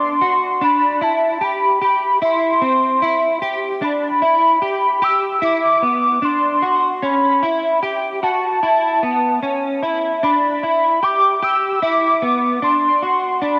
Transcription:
Already playing: D4 C6
0.21 F#4
0.61 D4 B5
1.01 E4 A5
1.41 G4 B5
1.82 G4 B5
2.22 E4 C6
2.61 C4
3.02 E4
3.42 G4
3.82 D4 B5
4.22 E4
4.62 G4
5.02 G4 E6
5.42 E4 D6
5.82 B3
6.22 D4 C6
6.62 F#4
7.02 C#4 B5
7.43 E4
7.83 G4
8.23 F#4 A5
8.63 E4
9.03 B3
9.43 C#4
9.83 E4
10.23 D4 B5
10.63 E4
11.03 G4 D6
11.43 G4 E6
11.82 E4 D6
12.22 B3
12.62 D4 C6
13.02 F#4
13.42 D4 B5

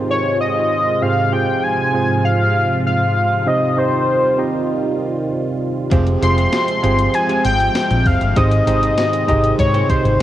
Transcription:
Already playing: G#2 C3 D#3 G#3 C4 D#4 F4 G4 G#4 C5
0.10 C#5
0.41 D#5
1.01 G#2 F3 C4 F4 G4 G#4 C5 F5
1.32 C4 F4 G4 G#4 C5 G5
1.63 G#5
1.93 C4 F4 G#4 C5
2.25 F5
2.86 F5
3.46 C3 D#3 G3 C4 D#4 G4 C5 D#5
3.77 C4 D#4 G4 C5 D#5
4.38 C4 D#4 G4 C5 D#5
5.90 F1 F2 C3 F3 G#3 C4 F4 G4 G#4 C5, kick, closed hi-hat
5.96 F3
6.07 closed hi-hat
6.22 F1 G#3 C4 F4 G4 G#4 C5 C6, closed hi-hat
6.37 G#3 C4 G4, closed hi-hat
6.53 snare, closed hi-hat, tambourine
6.68 muted clean electric guitar stroke, closed hi-hat
6.83 G1 G#3 C4 F4 G4 G#4 C5, closed hi-hat
6.99 muted clean electric guitar stroke, closed hi-hat
7.13 F2 C3 F3 G#5, muted clean electric guitar stroke, closed hi-hat
7.29 G#3 C4 G4, closed hi-hat
7.45 G#1 G#3 C4 G4 G5, closed hi-hat
7.60 closed hi-hat
7.75 F2 C3 F3, muted clean electric guitar stroke, snare, closed hi-hat, tambourine
7.91 A#1, muted clean electric guitar stroke, closed hi-hat
8.06 F#1 F5, kick, open hi-hat
8.21 G1, muted clean electric guitar stroke, closed hi-hat
8.36 G#1 G#2 C3 D#3 G#3 C4 D#4 G4 G#4 C5 D#5, kick, closed hi-hat
8.52 closed hi-hat
8.66 G#1 D#3 G#3 C4 D#4 G4 G#4 C5, closed hi-hat
8.82 D#4 G4 C5, closed hi-hat
8.98 snare, closed hi-hat, tambourine
9.13 muted clean electric guitar stroke, closed hi-hat
9.28 G#1 C3 D#4 G4 G#4 C5 D#5, kick, closed hi-hat
9.44 muted clean electric guitar stroke, closed hi-hat
9.58 G#2 D#3 G#3 C#5, muted clean electric guitar stroke, kick, closed hi-hat
9.74 D#4 G4 C5, closed hi-hat
9.89 D#4 G4 C5, kick, closed hi-hat
10.05 G#1, muted clean electric guitar stroke, closed hi-hat

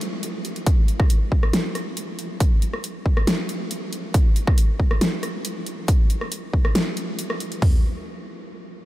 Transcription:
0.01 closed hi-hat
0.23 closed hi-hat
0.45 closed hi-hat
0.56 closed hi-hat
0.66 kick, closed hi-hat
0.88 closed hi-hat
1.00 kick, cross-stick
1.10 closed hi-hat
1.32 kick
1.43 cross-stick
1.53 snare, closed hi-hat
1.75 cross-stick, closed hi-hat
1.97 closed hi-hat
2.19 closed hi-hat
2.40 kick, closed hi-hat
2.62 closed hi-hat
2.73 cross-stick
2.84 closed hi-hat
3.06 kick
3.17 cross-stick
3.27 snare, closed hi-hat
3.49 closed hi-hat
3.71 closed hi-hat
3.93 closed hi-hat
4.14 kick, closed hi-hat
4.36 closed hi-hat
4.47 kick, cross-stick
4.58 closed hi-hat
4.80 kick
4.91 cross-stick
5.01 snare, closed hi-hat
5.23 cross-stick, closed hi-hat
5.45 closed hi-hat
5.66 closed hi-hat
5.88 kick, closed hi-hat
6.10 closed hi-hat
6.21 cross-stick
6.32 closed hi-hat
6.53 kick
6.65 cross-stick
6.75 snare, closed hi-hat
6.97 closed hi-hat
7.19 closed hi-hat
7.30 cross-stick
7.40 closed hi-hat
7.52 closed hi-hat
7.62 kick, floor tom, open hi-hat

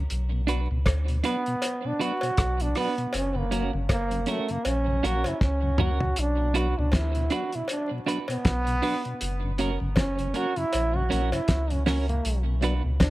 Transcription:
0.10 B1, closed hi-hat
0.32 B2
0.47 F#3 B3 D4 F#4 B4, closed hi-hat
0.71 C#2 B2
0.86 D2, kick, cross-stick, closed hi-hat, cowbell
1.08 B2, closed hi-hat
1.24 F#3 B3 D4 F#4 B4, closed hi-hat
1.46 B2, closed hi-hat
1.62 closed hi-hat, cowbell
1.85 B2 D4
1.99 F#3 B3 D4 F#4 B4, closed hi-hat
2.21 B2, closed hi-hat, cowbell
2.37 B1, kick, cross-stick, closed hi-hat
2.60 B2 D4, closed hi-hat
2.75 F#3 B3 D4 F#4 B4, cross-stick, open hi-hat
2.98 B2, closed hi-hat
3.13 F#1 C#4, closed hi-hat, cowbell
3.35 F#2 C#3 A#3
3.51 F#3 A#3 C#4 F#4 A#4, closed hi-hat
3.73 G1 F#2 C#3
3.89 F#1 A#3, kick, cross-stick, closed hi-hat, cowbell
4.11 F#2 C#3, closed hi-hat
4.26 F#3 A3 A#3 C#4 F#4 A#4, closed hi-hat
4.48 F#2 C#3 A#3, closed hi-hat
4.65 A#1 C#4, closed hi-hat, cowbell
4.87 F#2 C#3
5.03 A#1 F#3 A#3 C#4 F#4 A#4, closed hi-hat
5.24 F#2 C#3, closed hi-hat, cowbell
5.28 E4
5.41 C#2 C#4, kick, snare
5.62 F#2 C#3
5.78 F#3 A#3 C#4 F#4 A#4, mid tom
6.00 F#2 C#3, floor tom
6.16 B1 D4, closed hi-hat
6.40 B2
6.54 F#3 B3 D4 F#4 B4, closed hi-hat
6.78 C#2 B2 D4
6.92 D2 E4, kick, snare, closed hi-hat, cowbell
7.15 B2, closed hi-hat
7.30 F#3 B3 D4 F#4 B4, closed hi-hat
7.53 B2 E4, closed hi-hat
7.68 D4, closed hi-hat, cowbell
7.91 B2
8.06 F#3 B3 D4 F#4 B4, closed hi-hat
8.28 B2 B3, closed hi-hat, cowbell
8.45 B1, kick, snare, closed hi-hat
8.67 B2, closed hi-hat
8.82 F#3 B3 D4 F#4 B4, open hi-hat
9.05 B2, closed hi-hat
9.21 F#1, closed hi-hat
9.43 F#2 C#3
9.58 F#3 A#3 C#4 F#4 A#4, closed hi-hat
9.80 G1 F#2 C#3
9.96 F#1 C#4, kick, snare, closed hi-hat, cowbell
10.18 F#2 C#3, closed hi-hat
10.34 F#3 A#3 C#4 F#4 A#4, closed hi-hat
10.56 F#2 C#3 E4, closed hi-hat
10.73 A#1, closed hi-hat, cowbell
10.94 F#2 C#3 F#4
11.09 A#1 F#3 A#3 C#4 F#4 A#4, closed hi-hat
11.32 F#2 C#3 E4, closed hi-hat, cowbell
11.48 C#2, kick, snare, closed hi-hat
11.70 F#2 C#3 C#4, closed hi-hat
11.86 F#3 A#3 C#4 F#4 A#4, snare, open hi-hat
12.08 F#2 C#3 A#3, closed hi-hat
12.25 B1, closed hi-hat
12.46 B2
12.61 F#3 B3 D4 F#4 B4, closed hi-hat
12.83 C#2 B2
13.00 D2 D4, kick, snare, closed hi-hat, cowbell

